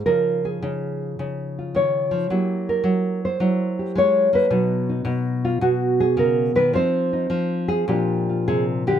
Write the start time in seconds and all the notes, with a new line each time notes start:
0.06 C#3 F3 D#4 F4 A#4
0.45 G#4
0.62 C#3 D#4
1.19 C#3 D#4
1.59 F4
1.75 D#3 C#5
2.11 F3
2.30 F#3 A#3 E4 G4
2.69 A#4
2.84 F#3
3.25 C5
3.40 F#3 E4
3.79 G4
3.95 G#3 C#5
4.33 A#3 B4
4.50 B2 F#3 B3 D#4
4.89 D#4
5.05 B2 D#4
5.45 F4
5.61 B2 F#4
6.00 G#4
6.17 C#3 A#4
6.56 D#3 B4
6.73 F3 C4 D#4 C5
7.13 D#4
7.30 F3
7.68 G#4
7.88 A#2 F3 D4 F4 G4
8.29 F4
8.48 C3 G#4
8.87 D3 G4